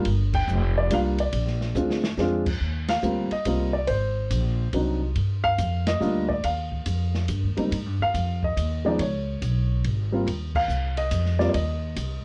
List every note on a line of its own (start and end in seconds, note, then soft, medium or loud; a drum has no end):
0.05 0.46 G1 medium
0.05 kick soft
0.05 ride medium
0.33 0.78 G5 loud
0.33 kick medium
0.33 crash medium
0.48 0.89 F1 loud
0.48 hi-hat pedal soft
0.78 0.91 D5 medium
0.91 1.32 C2 medium
0.91 1.16 G3 medium
0.91 1.16 A#3 medium
0.91 1.16 D4 medium
0.91 1.17 F4 medium
0.91 1.00 F5 medium
0.91 kick soft
0.91 hi-hat pedal medium
0.91 ride medium
1.19 1.72 D5 medium
1.19 ride soft
1.33 1.74 A#1 medium
1.33 kick soft
1.33 ride medium
1.47 snare soft
1.61 snare soft
1.75 2.17 D2 medium
1.75 2.01 G#3 medium
1.75 2.01 C4 medium
1.75 2.02 D4 medium
1.75 2.02 F4 medium
1.75 hi-hat pedal medium
1.91 snare medium
2.04 snare medium
2.18 2.59 F2 medium
2.18 2.44 G#3 medium
2.18 2.44 C4 medium
2.18 2.44 D4 medium
2.18 2.45 F4 medium
2.18 snare soft
2.46 kick medium
2.46 crash medium
2.61 3.02 D#2 medium
2.61 kick soft
2.88 3.33 F5 loud
2.88 snare medium
2.88 ride medium
3.03 3.29 D2 medium
3.03 3.28 G3 medium
3.03 3.29 A#3 medium
3.03 3.29 C4 medium
3.03 3.29 F4 medium
3.03 hi-hat pedal soft
3.31 3.76 D#5 medium
3.31 muted upright bass stroke soft
3.31 ride soft
3.45 3.87 C2 medium
3.45 3.71 G3 medium
3.45 3.72 A#3 medium
3.45 3.72 C4 medium
3.45 3.72 F4 medium
3.45 kick soft
3.45 hi-hat pedal soft
3.45 ride medium
3.73 3.88 D5 medium
3.87 4.30 G#1 medium
3.87 4.69 C5 medium
3.87 kick soft
3.87 ride medium
4.30 4.72 A#1 medium
4.30 kick soft
4.30 hi-hat pedal medium
4.30 ride medium
4.73 5.14 C2 medium
4.73 4.99 F#3 medium
4.73 4.99 C4 medium
4.73 4.99 D4 medium
4.73 5.00 D#4 medium
4.73 kick soft
4.73 ride medium
5.15 5.57 G2 medium
5.15 kick soft
5.15 ride medium
5.44 5.88 F5 loud
5.44 kick soft
5.58 6.00 F2 loud
5.58 kick soft
5.58 hi-hat pedal medium
5.58 ride medium
5.86 6.31 D#5 loud
5.86 snare medium
5.86 ride medium
6.00 6.42 D2 medium
6.00 6.26 G3 medium
6.00 6.26 A#3 medium
6.00 6.27 D4 medium
6.00 6.27 F4 medium
6.00 hi-hat pedal soft
6.28 6.42 D5 medium
6.28 kick medium
6.43 6.85 D#2 medium
6.43 7.25 F5 medium
6.43 kick soft
6.43 ride medium
6.72 kick medium
6.86 7.27 F2 medium
6.86 kick soft
6.86 hi-hat pedal medium
6.86 ride medium
7.15 snare soft
7.28 7.45 G2 medium
7.28 kick soft
7.28 hi-hat pedal soft
7.28 ride medium
7.43 7.57 D#2 medium
7.57 7.71 C#2 medium
7.57 7.70 G3 medium
7.57 7.70 A#3 medium
7.57 7.70 C4 medium
7.57 7.70 D#4 medium
7.57 ride soft
7.72 7.86 G#2 medium
7.72 kick soft
7.72 ride medium
7.86 7.99 G2 soft
8.00 8.13 D#2 medium
8.00 8.40 F5 loud
8.14 8.55 F2 medium
8.14 kick soft
8.14 hi-hat pedal soft
8.14 ride medium
8.43 8.87 D#5 medium
8.43 kick medium
8.57 8.98 D#2 medium
8.57 kick soft
8.57 hi-hat pedal soft
8.57 ride medium
8.85 8.98 F3 medium
8.85 8.97 G#3 medium
8.85 8.98 B3 medium
8.85 8.98 D#4 medium
8.85 9.00 D5 medium
8.99 9.40 C#2 medium
8.99 9.81 C#5 medium
8.99 kick soft
8.99 ride medium
9.42 9.83 B1 medium
9.42 kick soft
9.42 hi-hat pedal medium
9.42 ride medium
9.84 10.25 G#1 medium
9.84 kick soft
9.84 ride medium
10.12 10.25 G3 medium
10.12 10.25 A#3 medium
10.12 10.25 C4 medium
10.12 10.26 F4 medium
10.26 10.67 D#2 medium
10.26 kick soft
10.26 ride medium
10.55 10.99 F5 loud
10.55 kick medium
10.55 crash medium
10.68 11.10 C2 medium
10.68 hi-hat pedal medium
10.97 11.41 D#5 loud
10.97 ride medium
11.11 11.53 F2 medium
11.11 kick soft
11.11 hi-hat pedal medium
11.11 ride medium
11.26 snare soft
11.39 11.52 G3 medium
11.39 11.52 A#3 medium
11.39 11.53 C4 medium
11.39 11.53 F4 medium
11.39 11.48 D5 medium
11.39 snare soft
11.49 11.54 D5 medium
11.54 11.95 D#2 medium
11.54 12.25 D#5 medium
11.54 kick soft
11.54 ride medium
11.96 12.23 C2 medium
11.96 kick soft
11.96 hi-hat pedal medium
11.96 ride medium